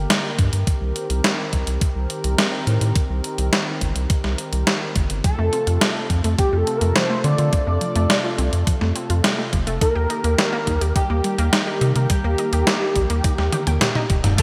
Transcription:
Already playing: D3 A#3 G4 A#4
0.10 snare, closed hi-hat
0.39 G2, kick, closed hi-hat
0.53 G2, closed hi-hat
0.67 D#3 C4, kick, closed hi-hat
0.81 C2
0.96 closed hi-hat
1.10 C2, closed hi-hat
1.24 snare, closed hi-hat
1.53 C2, kick, closed hi-hat
1.67 C2, closed hi-hat
1.81 kick, closed hi-hat
1.96 C2
2.10 closed hi-hat
2.24 C2, closed hi-hat
2.38 snare, closed hi-hat
2.67 A2, closed hi-hat
2.81 A2, closed hi-hat
2.96 kick, closed hi-hat
3.10 C2
3.24 closed hi-hat
3.38 C2, closed hi-hat
3.53 snare, closed hi-hat
3.81 G1, kick, closed hi-hat
3.96 C2, closed hi-hat
4.10 kick, closed hi-hat
4.24 C2, snare
4.38 closed hi-hat
4.53 C2, closed hi-hat
4.67 snare, closed hi-hat
4.96 G1, kick, closed hi-hat
5.10 G1, closed hi-hat
5.24 C3 F3 A3 F4 A4, kick, closed hi-hat
5.39 F2 A3
5.53 C4, closed hi-hat
5.67 F2 F4, closed hi-hat
5.81 C4, snare, closed hi-hat
5.96 A3
6.10 F2 F3, kick, closed hi-hat
6.24 F2 A3, closed hi-hat
6.38 C4 G4, kick, closed hi-hat
6.53 F2 F4
6.57 A4
6.67 C4, closed hi-hat
6.77 A#4
6.81 F2 A3, closed hi-hat
6.96 F3 C5, snare, closed hi-hat
7.10 A3
7.24 D3 C4 D5, closed hi-hat
7.38 D3 F4, closed hi-hat
7.53 C4, kick, closed hi-hat
7.67 F2 A3
7.81 F3, closed hi-hat
7.96 F2 A3, closed hi-hat
8.10 C4, snare, closed hi-hat
8.24 F4
8.38 C2 C4, closed hi-hat
8.53 F2 A3, closed hi-hat
8.67 F3, kick, closed hi-hat
8.81 F2 A3, snare
8.96 C4, closed hi-hat
9.10 F2 F4, closed hi-hat
9.24 C4, snare, closed hi-hat
9.38 A3
9.53 F1 F3, kick, closed hi-hat
9.67 F1 A3, closed hi-hat
9.81 D#3 A#3 D#4 G4 A#4, kick, closed hi-hat
9.95 D#2 G4
10.10 D#4, closed hi-hat
10.24 D#2 A#3, closed hi-hat
10.38 G3, snare, closed hi-hat
10.53 A#3
10.67 D#2 D#4, kick, closed hi-hat
10.81 D#2 G4, closed hi-hat
10.96 D#4 G4, kick, closed hi-hat
11.10 D#2 A#3
11.24 G3, closed hi-hat
11.38 D#2 A#3, closed hi-hat
11.53 D#4, snare, closed hi-hat
11.67 G4
11.81 C3 D#4, closed hi-hat
11.96 C3 A#3, closed hi-hat
12.10 G3 G4, kick, closed hi-hat
12.24 D#2 A#3
12.38 D#4, closed hi-hat
12.53 D#2 G4, closed hi-hat
12.67 D#4, snare, closed hi-hat
12.81 A#3
12.96 A#1 G3, kick, closed hi-hat
13.10 D#2 A#3, closed hi-hat
13.24 D#4, kick, closed hi-hat
13.38 D#2 G4, snare
13.53 G4, closed hi-hat, high tom
13.67 D#2 G5, closed hi-hat, high tom
13.81 G3, snare, closed hi-hat, mid tom
13.95 D#4, mid tom
14.10 D#1 G4, kick, closed hi-hat
14.24 D#1 D#4, closed hi-hat, mid tom
14.38 D3 G3 A#3 G4 A#4, kick, closed hi-hat, crash

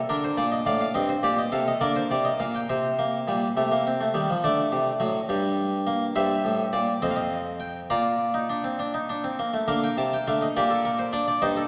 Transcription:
0.09 D3 D4 A#4
0.24 C5
0.37 A#2 D5
0.52 D#5
0.66 A2 D5 F5
0.81 F5
0.95 G2 C4 D#5
1.09 C5
1.23 A#2 G4 D5
1.39 D#5
1.52 C3 A4 F5
1.68 D#5
1.81 D3 A#3 A#4 D5
1.96 C5
2.11 C3 D5
2.25 D#5
2.40 A#2 F5
2.55 G5
2.69 C3 C4 C5
2.99 A#3
3.28 A#2 G3
3.57 C3 A3
3.72 A#3
3.87 C4
4.01 A3
4.14 D#3 G3
4.30 F3
4.44 D3 A3 D5
4.72 C3
5.00 A2 F#3
5.29 G2 G3
5.87 A#3
6.16 G2 G3 C5 E5
6.45 A2
6.73 A#2 D5
7.02 F2 C4 C5 D#5
7.10 F5
7.16 D#5
7.60 G5
7.90 A#2 F4 D5 A#5
8.34 D#4
8.50 D4
8.64 C4
8.79 D4
8.94 D#4
9.10 D4
9.24 C4
9.39 A#3
9.54 A3
9.68 D3 A#3 A#4 F5
9.84 G5
9.97 C3 A5
10.13 G5
10.28 D3 A3 F5
10.42 D#5
10.57 A#2 A#3 G4 D5
10.70 A4
10.85 A#4
10.99 C5
11.13 D4 D5
11.28 D5
11.42 G2 D#4 C5 D#5
11.57 A4

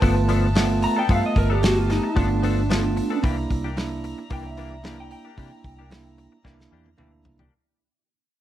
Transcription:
Already playing: B3 B4 A5
0.02 G1 F3 A3 B3 D4 F4 A4 E5, kick, open hi-hat
0.16 muted clean electric guitar stroke
0.29 F3 B3 D4 A4, open hi-hat
0.55 F3 A3 B3 D4 F4 A4, snare, open hi-hat
0.70 muted clean electric guitar stroke
0.82 A#5, muted clean electric guitar stroke, open hi-hat
0.96 B3 D4 A4 G5
1.09 G2 F3 A3 B3 D4 F4 A4 F5, kick, open hi-hat
1.23 D#5, muted clean electric guitar stroke
1.36 G1 A#4, muted clean electric guitar stroke, kick, open hi-hat
1.50 B3 D4 G4 A4
1.63 A3 B3 F#4 G4, muted clean electric guitar stroke, snare, open hi-hat
1.78 F4
1.90 D#4, muted clean electric guitar stroke, snare, open hi-hat
2.03 muted clean electric guitar stroke
2.16 G1 F3 A3 B3 D4 F4 A4, kick, open hi-hat
2.30 muted clean electric guitar stroke
2.43 F3 B3 D4 A4, open hi-hat
2.69 F3 A3 B3 D4 F4 A4, snare, open hi-hat
2.84 muted clean electric guitar stroke
2.96 muted clean electric guitar stroke, open hi-hat
3.10 B3 D4 A4
3.23 C2 E3 A#3 D4 E4 G4 D5 E5 A#5, kick, open hi-hat
3.38 muted clean electric guitar stroke
3.50 C2, muted clean electric guitar stroke, kick, open hi-hat
3.64 A#3 D4 G4
3.77 A#3 D4 E4, muted clean electric guitar stroke, snare, open hi-hat
4.04 muted clean electric guitar stroke, open hi-hat
4.18 muted clean electric guitar stroke
4.30 C2 E3 A#3 D4 E4 G4 G5, kick, open hi-hat
4.45 E5, muted clean electric guitar stroke
4.57 E3 A#3 D4 G4, open hi-hat
4.84 E3 A#3 D4 E4 G4, snare, open hi-hat
4.99 G5, muted clean electric guitar stroke
5.11 G5, muted clean electric guitar stroke, open hi-hat
5.25 A#3 D4 G4
5.38 C3 E3 A#3 D4 E4 G4, kick, open hi-hat
5.52 muted clean electric guitar stroke
5.64 C2, muted clean electric guitar stroke, kick, open hi-hat
5.79 A#3 D4 G4
5.90 A#3 D4 E4, muted clean electric guitar stroke, snare, open hi-hat
6.18 muted clean electric guitar stroke, open hi-hat
6.32 muted clean electric guitar stroke
6.45 C2 E3 A#3 D4 E4 G4, kick, snare
6.59 muted clean electric guitar stroke, snare
6.72 E2 E3 A#3 D4 G4
6.86 high tom
6.97 D2 E3 A#3 D4 E4 G4, mid tom
7.13 muted clean electric guitar stroke
7.25 C2, muted clean electric guitar stroke, floor tom
7.39 A#3 D4 G4, floor tom

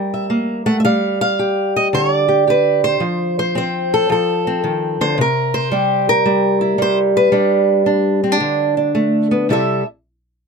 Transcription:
Already playing: G3 C4 G4 A#4 E5
0.14 E5
0.30 A#3
0.66 A3 F#5
0.80 E5
0.85 G3 F5
1.21 F5
1.39 G4
1.76 D#5
1.93 D3 C#5
2.14 D5
2.28 G4
2.47 G4 B4
2.84 C5
3.00 F3
3.39 C5
3.55 C4 C5
3.94 A4
4.10 F3 A4
4.47 C4
4.64 D#3
5.01 D3 C5
5.18 C3 A#4
5.54 C5
5.71 G3 G4
6.09 A#4
6.26 G3
6.61 E4
6.78 G3 C5
7.17 B4
7.32 G3 D4
7.86 D4
8.24 C4
8.32 D4
8.40 D3
8.77 D4
8.95 A3
9.31 B3
9.49 C3 G3 E4 A4 E5

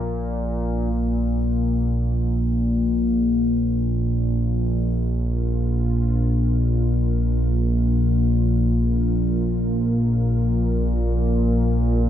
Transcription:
Already playing: A#1 A#2
0.90 A#1 A#2
1.33 F3
3.22 F4
4.56 A#4

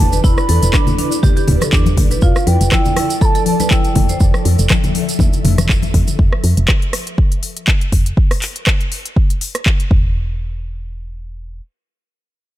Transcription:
Already playing: E4 B4 D5 A5
0.00 E1
0.12 B4, closed hi-hat, muted conga, shaker
0.24 E1 E4 B5, kick, shaker
0.37 cross-stick, shaker
0.49 E2 A4, open hi-hat, muted conga
0.63 E1, closed hi-hat, shaker
0.73 D4, kick, cross-stick, clap, muted conga, high conga, shaker
0.87 closed hi-hat, low conga, shaker
0.98 D4, open hi-hat, muted conga
1.12 closed hi-hat, shaker
1.23 G4, kick, muted conga, low conga, shaker
1.37 G4, closed hi-hat, shaker
1.48 D1, open hi-hat, low conga
1.61 A4, cross-stick, closed hi-hat, muted conga, high conga, shaker
1.72 E2 D4, kick, clap, shaker
1.86 closed hi-hat, muted conga, high conga, shaker
1.97 A1, kick, open hi-hat, high conga, low conga
2.11 B4, closed hi-hat, muted conga, shaker
2.21 F1 F3 F4 A4 D5 F5, kick, shaker
2.36 cross-stick, shaker
2.47 F2 B4 G5, open hi-hat, muted conga
2.61 F1, closed hi-hat, shaker
2.71 E4 G5, kick, cross-stick, clap, muted conga, high conga, shaker
2.85 closed hi-hat, low conga, shaker
2.96 E4, cross-stick, open hi-hat, muted conga
3.10 closed hi-hat, shaker
3.21 A4 A5 B5, kick, muted conga, shaker
3.35 A4, closed hi-hat, shaker
3.46 A5, open hi-hat, high conga
3.60 B4, closed hi-hat, muted conga, high conga, shaker
3.71 E4 G5, kick, clap, shaker
3.84 closed hi-hat, muted conga, shaker
3.96 F1, kick, open hi-hat, high conga, low conga
4.09 C5, closed hi-hat, muted conga, shaker
4.20 F1 E5, kick, shaker
4.34 cross-stick, shaker
4.45 F2, open hi-hat, muted conga
4.59 F1, closed hi-hat, shaker
4.69 kick, cross-stick, clap, muted conga, high conga, shaker
4.84 closed hi-hat, low conga, shaker
4.95 open hi-hat, muted conga
5.09 closed hi-hat, shaker
5.19 kick, muted conga, low conga, shaker
5.33 closed hi-hat, shaker
5.44 F1, open hi-hat, low conga
5.58 F1, cross-stick, closed hi-hat, muted conga, high conga, shaker
5.69 kick, clap, shaker
5.82 closed hi-hat, muted conga, high conga, shaker
5.94 F2, kick, open hi-hat, high conga, low conga
6.08 closed hi-hat, muted conga, shaker
6.19 F1, kick
6.33 cross-stick
6.44 F2, open hi-hat
6.57 F1, closed hi-hat
6.68 kick, cross-stick, clap
6.82 closed hi-hat
6.93 cross-stick, open hi-hat
7.07 closed hi-hat
7.18 kick
7.32 closed hi-hat
7.43 open hi-hat
7.57 closed hi-hat
7.68 kick, clap
7.81 closed hi-hat
7.92 F1, kick, open hi-hat
8.06 closed hi-hat
8.17 kick
8.31 cross-stick, open hi-hat
8.42 clap, open hi-hat
8.56 closed hi-hat
8.67 kick, cross-stick, clap
8.81 closed hi-hat
8.92 open hi-hat
9.05 closed hi-hat
9.16 kick
9.30 closed hi-hat
9.41 open hi-hat
9.55 cross-stick, closed hi-hat
9.66 kick, clap
9.80 closed hi-hat
9.91 E1, kick

